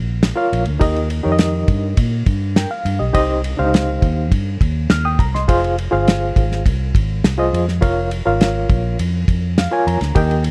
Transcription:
0.00 0.31 A#1 medium
0.23 snare loud
0.23 ride medium
0.36 0.63 F4 medium
0.36 0.63 A#4 medium
0.36 0.63 C#5 medium
0.36 0.63 F5 loud
0.53 0.65 A#1 medium
0.53 ride medium
0.66 0.79 D2 medium
0.66 ride soft
0.80 1.19 D#2 loud
0.80 1.64 D#3 medium
0.80 1.07 D#4 medium
0.80 1.07 G4 medium
0.80 1.07 A#4 medium
0.80 1.08 D#5 loud
0.80 kick medium
0.80 ride medium
0.96 ride soft
1.10 ride medium
1.23 1.63 F2 medium
1.23 1.95 D#4 medium
1.23 1.95 G4 medium
1.23 1.95 A#4 medium
1.23 1.31 C#5 medium
1.32 1.99 D#5 medium
1.39 snare loud
1.39 ride medium
1.68 1.94 G2 medium
1.68 kick medium
1.68 ride medium
1.97 2.23 A#2 loud
1.97 kick medium
1.97 ride medium
2.26 2.65 G2 loud
2.26 kick medium
2.26 ride medium
2.56 2.70 A#4 medium
2.56 2.70 G5 medium
2.56 snare loud
2.56 ride medium
2.71 2.98 F5 medium
2.85 2.98 G2 loud
2.85 ride medium
2.99 3.13 B1 medium
2.99 3.12 G4 medium
2.99 3.13 D#5 medium
3.13 3.53 C2 loud
3.13 3.98 C3 medium
3.13 3.40 D#4 medium
3.13 3.41 G4 medium
3.13 3.41 C5 medium
3.13 3.41 D#5 loud
3.13 kick medium
3.13 ride medium
3.44 ride medium
3.57 3.97 C#2 medium
3.57 3.64 D4 medium
3.57 4.29 G4 medium
3.57 4.30 C5 medium
3.57 4.30 F5 medium
3.64 4.32 D#4 medium
3.74 snare loud
3.74 ride medium
4.02 4.32 D#2 medium
4.02 kick medium
4.02 ride medium
4.32 4.57 G2 medium
4.32 kick medium
4.32 ride medium
4.61 4.86 D#2 loud
4.61 kick medium
4.61 ride medium
4.90 5.16 D#2 medium
4.90 5.04 F6 medium
4.90 snare loud
4.90 ride medium
5.05 5.19 G5 medium
5.05 5.19 D#6 medium
5.19 5.45 C2 medium
5.19 5.33 A#5 medium
5.19 kick loud
5.19 ride medium
5.34 5.62 D#5 medium
5.34 5.62 C6 medium
5.34 snare soft
5.48 5.87 F1 loud
5.48 5.75 F4 medium
5.48 5.75 G#4 medium
5.48 5.75 C5 medium
5.48 5.75 F5 medium
5.48 kick medium
5.48 ride medium
5.64 ride soft
5.78 ride medium
5.91 6.31 G1 loud
5.91 6.63 F4 medium
5.91 6.63 G#4 medium
5.91 6.63 C5 medium
5.91 6.63 F5 medium
6.08 snare loud
6.08 ride medium
6.36 6.62 G#1 loud
6.36 kick medium
6.36 ride medium
6.52 snare soft
6.66 6.91 C2 loud
6.66 kick medium
6.66 ride medium
6.95 7.20 G#1 medium
6.95 kick loud
6.95 ride medium
7.24 7.49 C2 medium
7.24 snare loud
7.24 ride medium
7.38 7.65 F4 medium
7.38 7.65 G#4 medium
7.38 7.65 C5 medium
7.38 7.65 D#5 loud
7.53 7.79 F2 loud
7.53 ride medium
7.68 snare soft
7.81 8.21 F1 loud
7.81 8.08 F4 medium
7.81 8.09 A#4 medium
7.81 8.09 C#5 medium
7.81 8.09 F5 loud
7.81 kick loud
7.81 ride medium
8.11 ride medium
8.25 8.65 G#1 medium
8.25 8.97 F4 medium
8.25 8.97 A#4 medium
8.25 8.97 C#5 medium
8.25 8.97 F5 medium
8.41 snare loud
8.41 ride medium
8.70 8.95 A#1 loud
8.70 kick loud
8.70 ride medium
8.99 9.25 F2 loud
8.99 ride medium
9.28 9.66 F2 medium
9.28 kick medium
9.28 ride medium
9.58 9.85 F5 medium
9.58 snare loud
9.58 ride medium
9.71 9.98 F4 medium
9.71 9.98 A#4 medium
9.71 9.99 C#5 medium
9.71 9.99 G#5 medium
9.87 9.99 F2 medium
9.87 10.14 A#5 medium
9.87 ride medium
10.01 10.14 D2 medium
10.01 snare soft
10.01 ride soft
10.15 10.51 D#2 loud
10.15 10.51 D#3 medium
10.15 10.42 G4 medium
10.15 10.43 A#4 medium
10.15 10.43 D#5 medium
10.15 10.43 G5 medium
10.15 kick loud
10.15 ride medium
10.31 ride soft
10.44 ride medium

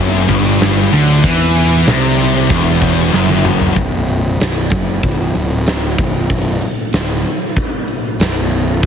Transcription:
0.00 0.25 F#1 loud
0.00 0.28 F#2 loud
0.29 0.88 G1 loud
0.29 0.91 G2 loud
0.29 kick medium
0.29 crash medium
0.61 snare loud
0.61 crash medium
0.92 1.22 D2 loud
0.92 1.23 D3 medium
0.92 crash medium
1.10 snare soft
1.24 1.83 E2 loud
1.24 1.86 E3 loud
1.24 kick loud
1.24 crash medium
1.55 crash medium
1.87 2.46 C2 medium
1.87 2.50 C3 loud
1.87 snare loud
1.87 crash medium
2.19 crash medium
2.50 3.10 E1 medium
2.50 3.13 E2 loud
2.50 kick loud
2.50 crash medium
2.82 kick medium
2.82 crash medium
3.13 3.73 F#1 medium
3.13 3.76 F#2 medium
3.13 snare medium
3.29 high tom medium
3.45 mid tom medium
3.60 floor tom medium
3.76 4.36 B0 loud
3.76 kick medium
3.76 open hi-hat medium
4.09 open hi-hat soft
4.40 4.70 B0 medium
4.40 snare loud
4.40 open hi-hat medium
4.71 5.01 F#1 medium
4.71 kick medium
4.71 open hi-hat medium
5.03 5.33 B0 medium
5.03 kick medium
5.03 open hi-hat medium
5.35 5.95 D1 medium
5.35 open hi-hat medium
5.67 snare loud
5.67 open hi-hat medium
5.98 6.28 B0 medium
5.98 kick loud
5.98 open hi-hat medium
6.30 6.60 B0 medium
6.30 kick medium
6.30 open hi-hat medium
6.61 open hi-hat medium
6.93 7.23 D1 loud
6.93 snare loud
6.93 open hi-hat medium
7.24 open hi-hat medium
7.56 kick loud
7.56 open hi-hat medium
7.88 open hi-hat medium
8.20 8.80 B0 medium
8.20 snare loud
8.20 open hi-hat medium
8.52 open hi-hat medium
8.83 8.86 B0 medium
8.83 open hi-hat medium

